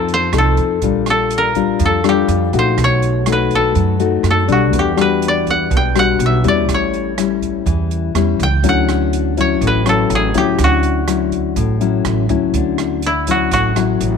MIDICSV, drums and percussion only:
0, 0, Header, 1, 2, 480
1, 0, Start_track
1, 0, Key_signature, 2, "major"
1, 0, Tempo, 488202
1, 813, Time_signature, 4, 2, 24, 8
1, 13937, End_track
2, 0, Start_track
2, 0, Title_t, "Drums"
2, 83, Note_on_c, 9, 42, 27
2, 181, Note_off_c, 9, 42, 0
2, 322, Note_on_c, 9, 37, 57
2, 322, Note_on_c, 9, 42, 37
2, 421, Note_off_c, 9, 37, 0
2, 421, Note_off_c, 9, 42, 0
2, 562, Note_on_c, 9, 42, 28
2, 566, Note_on_c, 9, 36, 23
2, 660, Note_off_c, 9, 42, 0
2, 664, Note_off_c, 9, 36, 0
2, 804, Note_on_c, 9, 42, 44
2, 807, Note_on_c, 9, 36, 56
2, 902, Note_off_c, 9, 42, 0
2, 905, Note_off_c, 9, 36, 0
2, 1044, Note_on_c, 9, 37, 55
2, 1044, Note_on_c, 9, 42, 26
2, 1143, Note_off_c, 9, 37, 0
2, 1143, Note_off_c, 9, 42, 0
2, 1283, Note_on_c, 9, 42, 43
2, 1381, Note_off_c, 9, 42, 0
2, 1525, Note_on_c, 9, 42, 29
2, 1527, Note_on_c, 9, 36, 21
2, 1623, Note_off_c, 9, 42, 0
2, 1625, Note_off_c, 9, 36, 0
2, 1765, Note_on_c, 9, 42, 42
2, 1767, Note_on_c, 9, 36, 50
2, 1863, Note_off_c, 9, 42, 0
2, 1866, Note_off_c, 9, 36, 0
2, 2007, Note_on_c, 9, 37, 57
2, 2007, Note_on_c, 9, 42, 27
2, 2105, Note_off_c, 9, 37, 0
2, 2105, Note_off_c, 9, 42, 0
2, 2247, Note_on_c, 9, 42, 44
2, 2345, Note_off_c, 9, 42, 0
2, 2489, Note_on_c, 9, 36, 24
2, 2489, Note_on_c, 9, 42, 27
2, 2587, Note_off_c, 9, 42, 0
2, 2588, Note_off_c, 9, 36, 0
2, 2730, Note_on_c, 9, 36, 52
2, 2731, Note_on_c, 9, 37, 54
2, 2731, Note_on_c, 9, 42, 41
2, 2828, Note_off_c, 9, 36, 0
2, 2829, Note_off_c, 9, 37, 0
2, 2829, Note_off_c, 9, 42, 0
2, 2973, Note_on_c, 9, 42, 26
2, 3072, Note_off_c, 9, 42, 0
2, 3206, Note_on_c, 9, 37, 56
2, 3206, Note_on_c, 9, 42, 43
2, 3304, Note_off_c, 9, 37, 0
2, 3304, Note_off_c, 9, 42, 0
2, 3447, Note_on_c, 9, 42, 24
2, 3448, Note_on_c, 9, 36, 21
2, 3546, Note_off_c, 9, 36, 0
2, 3546, Note_off_c, 9, 42, 0
2, 3689, Note_on_c, 9, 36, 47
2, 3690, Note_on_c, 9, 42, 37
2, 3787, Note_off_c, 9, 36, 0
2, 3788, Note_off_c, 9, 42, 0
2, 3929, Note_on_c, 9, 42, 27
2, 4027, Note_off_c, 9, 42, 0
2, 4169, Note_on_c, 9, 37, 52
2, 4169, Note_on_c, 9, 42, 36
2, 4267, Note_off_c, 9, 37, 0
2, 4267, Note_off_c, 9, 42, 0
2, 4410, Note_on_c, 9, 36, 25
2, 4410, Note_on_c, 9, 42, 28
2, 4508, Note_off_c, 9, 36, 0
2, 4508, Note_off_c, 9, 42, 0
2, 4651, Note_on_c, 9, 36, 58
2, 4651, Note_on_c, 9, 42, 40
2, 4749, Note_off_c, 9, 36, 0
2, 4750, Note_off_c, 9, 42, 0
2, 4892, Note_on_c, 9, 37, 58
2, 4892, Note_on_c, 9, 42, 26
2, 4990, Note_off_c, 9, 37, 0
2, 4990, Note_off_c, 9, 42, 0
2, 5135, Note_on_c, 9, 42, 44
2, 5233, Note_off_c, 9, 42, 0
2, 5373, Note_on_c, 9, 36, 23
2, 5376, Note_on_c, 9, 42, 25
2, 5471, Note_off_c, 9, 36, 0
2, 5474, Note_off_c, 9, 42, 0
2, 5613, Note_on_c, 9, 36, 53
2, 5615, Note_on_c, 9, 42, 39
2, 5711, Note_off_c, 9, 36, 0
2, 5713, Note_off_c, 9, 42, 0
2, 5856, Note_on_c, 9, 37, 59
2, 5856, Note_on_c, 9, 42, 28
2, 5954, Note_off_c, 9, 37, 0
2, 5954, Note_off_c, 9, 42, 0
2, 6094, Note_on_c, 9, 42, 44
2, 6192, Note_off_c, 9, 42, 0
2, 6333, Note_on_c, 9, 36, 25
2, 6333, Note_on_c, 9, 42, 31
2, 6431, Note_off_c, 9, 42, 0
2, 6432, Note_off_c, 9, 36, 0
2, 6574, Note_on_c, 9, 36, 59
2, 6575, Note_on_c, 9, 37, 56
2, 6575, Note_on_c, 9, 42, 42
2, 6673, Note_off_c, 9, 36, 0
2, 6673, Note_off_c, 9, 37, 0
2, 6673, Note_off_c, 9, 42, 0
2, 6818, Note_on_c, 9, 42, 26
2, 6917, Note_off_c, 9, 42, 0
2, 7058, Note_on_c, 9, 37, 60
2, 7058, Note_on_c, 9, 42, 46
2, 7156, Note_off_c, 9, 37, 0
2, 7156, Note_off_c, 9, 42, 0
2, 7295, Note_on_c, 9, 36, 24
2, 7300, Note_on_c, 9, 42, 27
2, 7394, Note_off_c, 9, 36, 0
2, 7399, Note_off_c, 9, 42, 0
2, 7536, Note_on_c, 9, 36, 54
2, 7536, Note_on_c, 9, 42, 42
2, 7634, Note_off_c, 9, 36, 0
2, 7634, Note_off_c, 9, 42, 0
2, 7777, Note_on_c, 9, 42, 27
2, 7876, Note_off_c, 9, 42, 0
2, 8015, Note_on_c, 9, 37, 59
2, 8015, Note_on_c, 9, 42, 40
2, 8113, Note_off_c, 9, 37, 0
2, 8113, Note_off_c, 9, 42, 0
2, 8254, Note_on_c, 9, 36, 27
2, 8256, Note_on_c, 9, 42, 26
2, 8353, Note_off_c, 9, 36, 0
2, 8354, Note_off_c, 9, 42, 0
2, 8492, Note_on_c, 9, 42, 42
2, 8494, Note_on_c, 9, 36, 54
2, 8590, Note_off_c, 9, 42, 0
2, 8593, Note_off_c, 9, 36, 0
2, 8737, Note_on_c, 9, 37, 59
2, 8737, Note_on_c, 9, 42, 27
2, 8835, Note_off_c, 9, 37, 0
2, 8835, Note_off_c, 9, 42, 0
2, 8977, Note_on_c, 9, 42, 40
2, 9076, Note_off_c, 9, 42, 0
2, 9213, Note_on_c, 9, 36, 22
2, 9216, Note_on_c, 9, 42, 26
2, 9311, Note_off_c, 9, 36, 0
2, 9314, Note_off_c, 9, 42, 0
2, 9453, Note_on_c, 9, 36, 53
2, 9454, Note_on_c, 9, 42, 39
2, 9551, Note_off_c, 9, 36, 0
2, 9552, Note_off_c, 9, 42, 0
2, 9693, Note_on_c, 9, 37, 62
2, 9693, Note_on_c, 9, 42, 29
2, 9791, Note_off_c, 9, 37, 0
2, 9791, Note_off_c, 9, 42, 0
2, 9932, Note_on_c, 9, 42, 46
2, 10030, Note_off_c, 9, 42, 0
2, 10168, Note_on_c, 9, 42, 30
2, 10169, Note_on_c, 9, 36, 25
2, 10266, Note_off_c, 9, 42, 0
2, 10268, Note_off_c, 9, 36, 0
2, 10407, Note_on_c, 9, 37, 58
2, 10407, Note_on_c, 9, 42, 47
2, 10409, Note_on_c, 9, 36, 61
2, 10506, Note_off_c, 9, 37, 0
2, 10506, Note_off_c, 9, 42, 0
2, 10507, Note_off_c, 9, 36, 0
2, 10647, Note_on_c, 9, 42, 30
2, 10745, Note_off_c, 9, 42, 0
2, 10890, Note_on_c, 9, 37, 58
2, 10890, Note_on_c, 9, 42, 46
2, 10988, Note_off_c, 9, 37, 0
2, 10988, Note_off_c, 9, 42, 0
2, 11128, Note_on_c, 9, 36, 23
2, 11131, Note_on_c, 9, 42, 26
2, 11227, Note_off_c, 9, 36, 0
2, 11229, Note_off_c, 9, 42, 0
2, 11368, Note_on_c, 9, 36, 52
2, 11368, Note_on_c, 9, 42, 41
2, 11466, Note_off_c, 9, 36, 0
2, 11467, Note_off_c, 9, 42, 0
2, 11611, Note_on_c, 9, 42, 30
2, 11709, Note_off_c, 9, 42, 0
2, 11846, Note_on_c, 9, 37, 63
2, 11846, Note_on_c, 9, 42, 44
2, 11944, Note_off_c, 9, 37, 0
2, 11944, Note_off_c, 9, 42, 0
2, 12085, Note_on_c, 9, 42, 29
2, 12087, Note_on_c, 9, 36, 26
2, 12183, Note_off_c, 9, 42, 0
2, 12185, Note_off_c, 9, 36, 0
2, 12327, Note_on_c, 9, 36, 54
2, 12327, Note_on_c, 9, 42, 53
2, 12425, Note_off_c, 9, 36, 0
2, 12425, Note_off_c, 9, 42, 0
2, 12568, Note_on_c, 9, 37, 55
2, 12568, Note_on_c, 9, 42, 37
2, 12666, Note_off_c, 9, 37, 0
2, 12666, Note_off_c, 9, 42, 0
2, 12806, Note_on_c, 9, 42, 41
2, 12904, Note_off_c, 9, 42, 0
2, 13047, Note_on_c, 9, 42, 43
2, 13048, Note_on_c, 9, 36, 20
2, 13145, Note_off_c, 9, 42, 0
2, 13146, Note_off_c, 9, 36, 0
2, 13288, Note_on_c, 9, 36, 49
2, 13288, Note_on_c, 9, 42, 54
2, 13386, Note_off_c, 9, 36, 0
2, 13386, Note_off_c, 9, 42, 0
2, 13531, Note_on_c, 9, 37, 58
2, 13531, Note_on_c, 9, 42, 47
2, 13629, Note_off_c, 9, 37, 0
2, 13629, Note_off_c, 9, 42, 0
2, 13770, Note_on_c, 9, 42, 43
2, 13869, Note_off_c, 9, 42, 0
2, 13937, End_track
0, 0, End_of_file